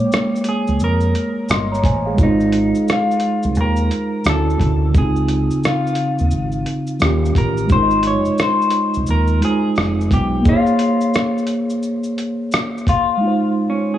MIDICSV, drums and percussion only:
0, 0, Header, 1, 2, 480
1, 0, Start_track
1, 0, Key_signature, -4, "major"
1, 0, Tempo, 689655
1, 1520, Time_signature, 4, 2, 24, 8
1, 9731, End_track
2, 0, Start_track
2, 0, Title_t, "Drums"
2, 83, Note_on_c, 9, 82, 56
2, 95, Note_on_c, 9, 37, 101
2, 153, Note_off_c, 9, 82, 0
2, 165, Note_off_c, 9, 37, 0
2, 248, Note_on_c, 9, 82, 41
2, 306, Note_off_c, 9, 82, 0
2, 306, Note_on_c, 9, 42, 59
2, 306, Note_on_c, 9, 82, 43
2, 376, Note_off_c, 9, 42, 0
2, 376, Note_off_c, 9, 82, 0
2, 468, Note_on_c, 9, 82, 53
2, 538, Note_off_c, 9, 82, 0
2, 554, Note_on_c, 9, 82, 67
2, 624, Note_off_c, 9, 82, 0
2, 699, Note_on_c, 9, 82, 44
2, 769, Note_off_c, 9, 82, 0
2, 800, Note_on_c, 9, 42, 57
2, 800, Note_on_c, 9, 82, 40
2, 870, Note_off_c, 9, 42, 0
2, 870, Note_off_c, 9, 82, 0
2, 1035, Note_on_c, 9, 82, 68
2, 1050, Note_on_c, 9, 37, 105
2, 1104, Note_off_c, 9, 82, 0
2, 1120, Note_off_c, 9, 37, 0
2, 1215, Note_on_c, 9, 82, 46
2, 1278, Note_on_c, 9, 36, 96
2, 1284, Note_off_c, 9, 82, 0
2, 1287, Note_on_c, 9, 42, 53
2, 1287, Note_on_c, 9, 82, 39
2, 1348, Note_off_c, 9, 36, 0
2, 1356, Note_off_c, 9, 42, 0
2, 1356, Note_off_c, 9, 82, 0
2, 1519, Note_on_c, 9, 82, 68
2, 1520, Note_on_c, 9, 36, 107
2, 1588, Note_off_c, 9, 82, 0
2, 1590, Note_off_c, 9, 36, 0
2, 1672, Note_on_c, 9, 82, 40
2, 1742, Note_off_c, 9, 82, 0
2, 1756, Note_on_c, 9, 42, 67
2, 1756, Note_on_c, 9, 82, 43
2, 1825, Note_off_c, 9, 42, 0
2, 1825, Note_off_c, 9, 82, 0
2, 1911, Note_on_c, 9, 82, 45
2, 1980, Note_off_c, 9, 82, 0
2, 2003, Note_on_c, 9, 82, 66
2, 2015, Note_on_c, 9, 37, 99
2, 2073, Note_off_c, 9, 82, 0
2, 2085, Note_off_c, 9, 37, 0
2, 2165, Note_on_c, 9, 82, 41
2, 2225, Note_off_c, 9, 82, 0
2, 2225, Note_on_c, 9, 42, 55
2, 2225, Note_on_c, 9, 82, 44
2, 2294, Note_off_c, 9, 42, 0
2, 2294, Note_off_c, 9, 82, 0
2, 2387, Note_on_c, 9, 82, 49
2, 2456, Note_off_c, 9, 82, 0
2, 2472, Note_on_c, 9, 82, 67
2, 2542, Note_off_c, 9, 82, 0
2, 2620, Note_on_c, 9, 82, 43
2, 2690, Note_off_c, 9, 82, 0
2, 2723, Note_on_c, 9, 42, 50
2, 2723, Note_on_c, 9, 82, 41
2, 2793, Note_off_c, 9, 42, 0
2, 2793, Note_off_c, 9, 82, 0
2, 2955, Note_on_c, 9, 82, 70
2, 2970, Note_on_c, 9, 37, 100
2, 3024, Note_off_c, 9, 82, 0
2, 3040, Note_off_c, 9, 37, 0
2, 3133, Note_on_c, 9, 82, 42
2, 3199, Note_on_c, 9, 36, 82
2, 3203, Note_off_c, 9, 82, 0
2, 3207, Note_on_c, 9, 42, 50
2, 3207, Note_on_c, 9, 82, 41
2, 3269, Note_off_c, 9, 36, 0
2, 3277, Note_off_c, 9, 42, 0
2, 3277, Note_off_c, 9, 82, 0
2, 3441, Note_on_c, 9, 82, 59
2, 3442, Note_on_c, 9, 36, 110
2, 3510, Note_off_c, 9, 82, 0
2, 3511, Note_off_c, 9, 36, 0
2, 3592, Note_on_c, 9, 82, 36
2, 3661, Note_off_c, 9, 82, 0
2, 3677, Note_on_c, 9, 42, 66
2, 3677, Note_on_c, 9, 82, 43
2, 3746, Note_off_c, 9, 42, 0
2, 3746, Note_off_c, 9, 82, 0
2, 3830, Note_on_c, 9, 82, 47
2, 3900, Note_off_c, 9, 82, 0
2, 3920, Note_on_c, 9, 82, 60
2, 3932, Note_on_c, 9, 37, 102
2, 3990, Note_off_c, 9, 82, 0
2, 4002, Note_off_c, 9, 37, 0
2, 4083, Note_on_c, 9, 82, 41
2, 4141, Note_off_c, 9, 82, 0
2, 4141, Note_on_c, 9, 42, 55
2, 4141, Note_on_c, 9, 82, 39
2, 4210, Note_off_c, 9, 42, 0
2, 4210, Note_off_c, 9, 82, 0
2, 4303, Note_on_c, 9, 82, 50
2, 4373, Note_off_c, 9, 82, 0
2, 4390, Note_on_c, 9, 82, 66
2, 4460, Note_off_c, 9, 82, 0
2, 4538, Note_on_c, 9, 82, 41
2, 4608, Note_off_c, 9, 82, 0
2, 4637, Note_on_c, 9, 42, 53
2, 4637, Note_on_c, 9, 82, 35
2, 4706, Note_off_c, 9, 42, 0
2, 4706, Note_off_c, 9, 82, 0
2, 4782, Note_on_c, 9, 82, 44
2, 4851, Note_off_c, 9, 82, 0
2, 4870, Note_on_c, 9, 82, 64
2, 4886, Note_on_c, 9, 37, 100
2, 4940, Note_off_c, 9, 82, 0
2, 4955, Note_off_c, 9, 37, 0
2, 5049, Note_on_c, 9, 82, 44
2, 5117, Note_on_c, 9, 36, 92
2, 5119, Note_off_c, 9, 82, 0
2, 5124, Note_on_c, 9, 42, 53
2, 5124, Note_on_c, 9, 82, 37
2, 5187, Note_off_c, 9, 36, 0
2, 5194, Note_off_c, 9, 42, 0
2, 5194, Note_off_c, 9, 82, 0
2, 5271, Note_on_c, 9, 82, 48
2, 5341, Note_off_c, 9, 82, 0
2, 5355, Note_on_c, 9, 82, 58
2, 5359, Note_on_c, 9, 36, 109
2, 5424, Note_off_c, 9, 82, 0
2, 5429, Note_off_c, 9, 36, 0
2, 5505, Note_on_c, 9, 82, 36
2, 5575, Note_off_c, 9, 82, 0
2, 5589, Note_on_c, 9, 42, 61
2, 5589, Note_on_c, 9, 82, 46
2, 5659, Note_off_c, 9, 42, 0
2, 5659, Note_off_c, 9, 82, 0
2, 5745, Note_on_c, 9, 82, 42
2, 5814, Note_off_c, 9, 82, 0
2, 5833, Note_on_c, 9, 82, 58
2, 5845, Note_on_c, 9, 37, 100
2, 5902, Note_off_c, 9, 82, 0
2, 5915, Note_off_c, 9, 37, 0
2, 5999, Note_on_c, 9, 82, 42
2, 6058, Note_off_c, 9, 82, 0
2, 6058, Note_on_c, 9, 42, 61
2, 6058, Note_on_c, 9, 82, 42
2, 6128, Note_off_c, 9, 42, 0
2, 6128, Note_off_c, 9, 82, 0
2, 6222, Note_on_c, 9, 82, 46
2, 6291, Note_off_c, 9, 82, 0
2, 6309, Note_on_c, 9, 82, 65
2, 6378, Note_off_c, 9, 82, 0
2, 6454, Note_on_c, 9, 82, 45
2, 6524, Note_off_c, 9, 82, 0
2, 6557, Note_on_c, 9, 42, 58
2, 6557, Note_on_c, 9, 82, 36
2, 6627, Note_off_c, 9, 42, 0
2, 6627, Note_off_c, 9, 82, 0
2, 6790, Note_on_c, 9, 82, 63
2, 6805, Note_on_c, 9, 37, 101
2, 6860, Note_off_c, 9, 82, 0
2, 6875, Note_off_c, 9, 37, 0
2, 6966, Note_on_c, 9, 82, 45
2, 7035, Note_on_c, 9, 36, 87
2, 7036, Note_off_c, 9, 82, 0
2, 7040, Note_on_c, 9, 42, 52
2, 7040, Note_on_c, 9, 82, 39
2, 7105, Note_off_c, 9, 36, 0
2, 7110, Note_off_c, 9, 42, 0
2, 7110, Note_off_c, 9, 82, 0
2, 7274, Note_on_c, 9, 82, 62
2, 7277, Note_on_c, 9, 36, 113
2, 7343, Note_off_c, 9, 82, 0
2, 7347, Note_off_c, 9, 36, 0
2, 7424, Note_on_c, 9, 82, 35
2, 7494, Note_off_c, 9, 82, 0
2, 7510, Note_on_c, 9, 42, 65
2, 7510, Note_on_c, 9, 82, 41
2, 7580, Note_off_c, 9, 42, 0
2, 7580, Note_off_c, 9, 82, 0
2, 7662, Note_on_c, 9, 82, 44
2, 7732, Note_off_c, 9, 82, 0
2, 7753, Note_on_c, 9, 82, 55
2, 7765, Note_on_c, 9, 37, 106
2, 7823, Note_off_c, 9, 82, 0
2, 7835, Note_off_c, 9, 37, 0
2, 7921, Note_on_c, 9, 82, 42
2, 7981, Note_off_c, 9, 82, 0
2, 7981, Note_on_c, 9, 42, 61
2, 7981, Note_on_c, 9, 82, 44
2, 8051, Note_off_c, 9, 42, 0
2, 8051, Note_off_c, 9, 82, 0
2, 8142, Note_on_c, 9, 82, 50
2, 8211, Note_off_c, 9, 82, 0
2, 8232, Note_on_c, 9, 82, 68
2, 8302, Note_off_c, 9, 82, 0
2, 8376, Note_on_c, 9, 82, 45
2, 8446, Note_off_c, 9, 82, 0
2, 8477, Note_on_c, 9, 42, 52
2, 8477, Note_on_c, 9, 82, 39
2, 8547, Note_off_c, 9, 42, 0
2, 8547, Note_off_c, 9, 82, 0
2, 8712, Note_on_c, 9, 82, 63
2, 8727, Note_on_c, 9, 37, 111
2, 8781, Note_off_c, 9, 82, 0
2, 8797, Note_off_c, 9, 37, 0
2, 8893, Note_on_c, 9, 82, 46
2, 8956, Note_on_c, 9, 36, 95
2, 8962, Note_off_c, 9, 82, 0
2, 8962, Note_on_c, 9, 42, 53
2, 8962, Note_on_c, 9, 82, 41
2, 9026, Note_off_c, 9, 36, 0
2, 9032, Note_off_c, 9, 42, 0
2, 9032, Note_off_c, 9, 82, 0
2, 9731, End_track
0, 0, End_of_file